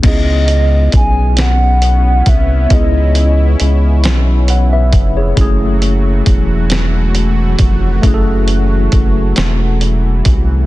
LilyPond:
<<
  \new Staff \with { instrumentName = "Soft synth lead" } { \time 6/8 \key cis \minor \tempo 4. = 45 dis''4 gis''8 fis''4 e''8 | dis''4 r2 | r2. | r2. | }
  \new Staff \with { instrumentName = "Tine electric piano" } { \time 6/8 \key cis \minor << { r2. | r2 <cis'' fis''>16 <b' e''>8 <gis' cis''>16~ | <gis' cis''>16 r2 r8. | r2. | } \\ { <b cis' e' gis'>2. | <b e' gis' dis''>2. | <gis a cis' e' gis'>2. | <a cis' e' gis' a'>2. | } >> }
  \new Staff \with { instrumentName = "Analog synth pad" } { \time 6/8 \key cis \minor <e b cis' e'>2.~ | <e b cis' e'>2. | <fis a fis'>2.~ | <fis a fis'>2. | }
  \new Staff \with { instrumentName = "Analog synth bass" } { \clef bass \time 6/8 \key cis \minor cis,4 b,,4. bis,,8 | cis,4 cis,8 b,,4 eis,,8 | fis,,4 e,,4. eis,,8 | fis,,4 fis,,8 e,,4 bis,,8 | }
  \new DrumStaff \with { instrumentName = "Drums" } \drummode { \time 6/8 <cymc hh bd>8 hh8 <hh bd>8 <hh sn>8 hh8 <hh bd>8 | <hh bd>8 hh8 hh8 <hh sn>8 hh8 <hh bd>8 | <hh bd>8 hh8 <hh bd>8 <hh sn>8 hh8 <hh bd>8 | <hh bd>8 hh8 <hh bd>8 <hh sn>8 hh8 <hh bd>8 | }
>>